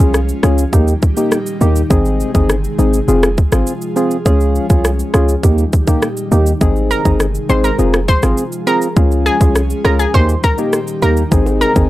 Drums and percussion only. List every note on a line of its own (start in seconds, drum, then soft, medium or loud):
0.14 cross-stick medium
0.14 shaker medium
0.29 shaker medium
0.43 cross-stick medium
0.43 shaker medium
0.58 shaker medium
0.73 kick medium
0.73 shaker medium
0.88 shaker soft
1.02 kick loud
1.02 shaker medium
1.17 shaker medium
1.32 cross-stick medium
1.32 shaker medium
1.46 shaker medium
1.61 shaker medium
1.76 shaker medium
1.91 kick loud
1.91 shaker medium
2.05 shaker soft
2.20 shaker medium
2.35 kick medium
2.35 shaker medium
2.49 cross-stick medium
2.49 shaker medium
2.64 shaker medium
2.79 shaker medium
2.93 shaker medium
3.08 shaker medium
3.23 cross-stick loud
3.23 shaker soft
3.38 kick medium
3.38 shaker medium
3.52 cross-stick medium
3.52 shaker medium
3.67 shaker medium
3.82 shaker medium
3.96 shaker medium
4.11 shaker medium
4.26 kick loud
4.26 shaker medium
4.41 shaker soft
4.55 shaker medium
4.70 kick medium
4.70 shaker medium
4.85 cross-stick medium
4.85 shaker medium
4.99 shaker medium
5.14 cross-stick medium
5.14 shaker medium
5.29 shaker medium
5.43 kick medium
5.43 shaker medium
5.58 shaker medium
5.73 kick medium
5.73 shaker medium
5.87 kick medium
5.87 shaker medium
6.02 cross-stick medium
6.02 shaker medium
6.17 shaker medium
6.32 shaker medium
6.46 shaker medium
6.61 kick loud
6.61 shaker medium
6.76 shaker soft
6.91 shaker medium
7.05 kick medium
7.05 shaker medium
7.20 cross-stick medium
7.20 shaker medium
7.35 shaker medium
7.50 shaker medium
7.64 shaker medium
7.79 shaker medium
7.94 cross-stick loud
7.94 shaker soft
8.08 kick medium
8.08 shaker medium
8.23 cross-stick medium
8.23 shaker medium
8.38 shaker medium
8.52 shaker medium
8.67 shaker medium
8.82 shaker medium
8.97 kick loud
8.97 shaker medium
9.11 shaker soft
9.26 shaker medium
9.41 kick medium
9.41 shaker medium
9.55 cross-stick medium
9.55 shaker medium
9.70 shaker medium
9.85 cross-stick medium
9.85 shaker medium
10.00 shaker medium
10.14 kick medium
10.14 shaker medium
10.29 shaker soft
10.44 kick loud
10.44 shaker medium
10.58 shaker medium
10.73 cross-stick medium
10.73 shaker medium
10.88 shaker medium
11.02 shaker medium
11.17 shaker medium
11.32 kick loud
11.32 shaker medium
11.46 high bongo medium
11.46 shaker soft
11.61 high bongo medium
11.61 shaker medium
11.76 kick medium
11.76 shaker medium